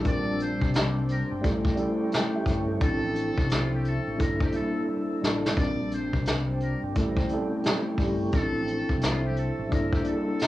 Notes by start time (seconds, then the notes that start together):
0.03 A#1 G3 C4 D4 F4 A#4 C5 G5 D6, kick, closed hi-hat
0.07 D5
0.40 C5, closed hi-hat
0.62 C2, kick
0.74 snare, closed hi-hat
1.08 A#4, closed hi-hat
1.32 G1
1.41 A1 G3 A3 C#4 E4 A4 C#6, kick, closed hi-hat
1.65 kick
1.75 G3 A3 C#4 E4 A4, closed hi-hat
2.12 G5, snare, closed hi-hat
2.35 G4 E5
2.46 G1 E4 C#5, kick, closed hi-hat
2.68 C#4 A4
2.80 A1 F3 C4 D4 E4 A4 C5 E5 E6, kick, closed hi-hat
3.15 closed hi-hat
3.38 C2, kick
3.49 F4, snare, closed hi-hat
3.74 G4
3.84 A4, closed hi-hat
4.07 A1
4.16 G3 A#3 D4 E4 A4 A5, kick, closed hi-hat
4.20 G1 A#4
4.41 G4, kick
4.52 G3 A#3 D4 E4 A4, closed hi-hat
4.56 A4
5.22 A1 G3 A#3 D4 E4 A4, snare
5.46 snare
5.56 A#1 G3 C4 D4 F4 A#4 C5 D5 G5 D6, kick, closed hi-hat
5.92 C5, closed hi-hat
6.13 C2, kick
6.26 snare, closed hi-hat
6.60 A#4, closed hi-hat
6.83 G1
6.94 A1 G3 A3 C#4 E4 A4 C#6, kick, closed hi-hat
7.17 kick
7.29 G3 A3 C4 E4, closed hi-hat
7.34 A4
7.38 C#4
7.63 snare, closed hi-hat
7.98 G1 G3 A3 C#4, kick, open hi-hat
8.02 E4 G4
8.31 A1 F3 C4 D4 E4 A4 C5 E5 E6, kick, closed hi-hat
8.67 closed hi-hat
8.89 C2, kick
9.01 F4, snare, closed hi-hat
9.26 G4
9.36 A4, closed hi-hat
9.59 A1
9.69 G1 G3 A#3 D4 E4 A4 A#4 A5, kick, closed hi-hat
9.93 G4, kick
10.03 G3 A#3 D4 E4 G#4, closed hi-hat
10.08 A4
10.14 A4
10.39 snare, closed hi-hat